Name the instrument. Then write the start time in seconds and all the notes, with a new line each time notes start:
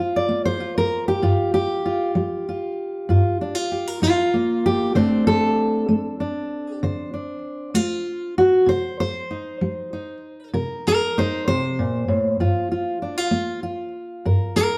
steel-string acoustic guitar
Already playing: C5
0.00 F4
0.16 D5
0.29 A#3
0.45 C5
0.60 F4
0.78 A#4
1.08 G4
1.22 G2 F4
1.54 G4
1.86 F4
2.15 G3
2.49 F4
3.09 G2 F4
3.41 D4
3.55 F4
3.72 G4
3.88 A#4
4.02 G3 F4
4.34 A#3
4.66 G4
4.95 D3 A3 C4 D4 C5
5.27 A4
5.89 A3
6.20 D4
6.83 D3 C5
7.14 D4
7.74 A3 F4
8.38 F#4
8.66 C3 C5
9.00 C5
9.31 D#4
9.61 G3
9.93 D#4
10.54 C3 A#4
10.87 G4 A#4
11.18 D#4 C5
11.48 C3 C5
11.79 A#2
12.08 A2
12.40 G2 F4
12.72 F4
13.02 D4
13.18 F4
13.31 A#3
13.63 F4
14.25 G2 A#4
14.56 G4 A#4